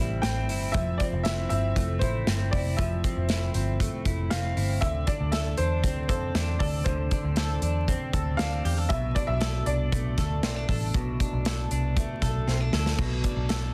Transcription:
Already playing: A1 A2 G3 C4
0.00 E4
0.22 A1 C4 G5, snare, closed hi-hat
0.49 G1 E4, open hi-hat
0.72 F1 F3 E5, kick, closed hi-hat
0.98 C4 D5, kick, closed hi-hat
1.13 F1
1.23 E4 E5, snare, closed hi-hat
1.49 G1 C4 E5, closed hi-hat
1.76 F1 A3, kick, closed hi-hat
1.99 A1 E4 C5, kick, closed hi-hat
2.27 G1 C4, snare, closed hi-hat
2.51 F1 E4 D5, kick, open hi-hat
2.77 F1 F3 E5, kick, closed hi-hat
3.04 C4, kick, closed hi-hat
3.17 F1
3.29 E4, snare, closed hi-hat
3.54 G1 C4, closed hi-hat
3.80 A3, kick, closed hi-hat
4.05 F1 E4, kick, closed hi-hat
4.30 F1 C4 F5, snare, closed hi-hat
4.57 G1 E4, open hi-hat
4.81 D2 D3 E5, kick, closed hi-hat
5.07 D4 D5, kick, closed hi-hat
5.21 D2
5.32 A4 E5, snare, closed hi-hat
5.58 E2 D4 C5, closed hi-hat
5.83 D2 C4, kick, closed hi-hat
6.09 F2 A4 C5, kick, closed hi-hat
6.35 E2 D4, snare, closed hi-hat
6.59 D2 A4 D5, kick, open hi-hat
6.84 D2 D3 C5, kick, closed hi-hat
7.11 D4, kick, closed hi-hat
7.24 D2
7.36 A4, snare, closed hi-hat
7.62 E2 D4, closed hi-hat
7.88 C4, kick, closed hi-hat
8.13 D2 A4, kick, closed hi-hat
8.37 D2 D4 F5, snare, closed hi-hat
8.65 E2 G4, open hi-hat
8.78 A4
8.89 B1 B2 E5, kick, closed hi-hat
9.15 D4 D5, kick, closed hi-hat
9.27 B1 E5
9.41 A4, snare, closed hi-hat
9.66 C2 D4 D5, closed hi-hat
9.92 B1 A3, kick, closed hi-hat
10.18 D2 A4, kick, snare, closed hi-hat
10.43 B1 C4, snare, closed hi-hat
10.56 D4
10.69 A1 A4, kick, open hi-hat
10.94 B1 B2, kick, closed hi-hat
11.20 D4, kick, closed hi-hat
11.33 B1
11.45 A4, snare, closed hi-hat
11.71 C2 D4, closed hi-hat
11.97 A3, kick, closed hi-hat
12.22 B1 A4, kick, snare, closed hi-hat
12.47 B1 C4, snare
12.61 D4
12.72 D2 A4, snare
12.86 snare
12.99 B1 B2, kick, crash
13.24 D4, kick, closed hi-hat
13.37 B1
13.49 A4, snare, closed hi-hat

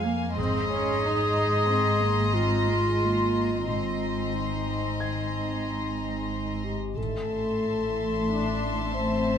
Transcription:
Already playing: F2 F5 G#5
0.05 A#3
0.36 G#1 G#2 C4 G#4 D#5 A#5 C6
0.71 C#4
1.05 D#4
1.71 C4
2.03 A#3
2.34 C4 F4
2.69 G#3
3.02 A#3
3.67 G#1 G#2 C4 F4 D#5 A#5 C6
4.35 D#4
5.00 G#6
6.64 G4
6.97 A1 A2 A4 E5 A5 C6
8.30 D4
8.94 C4 C5

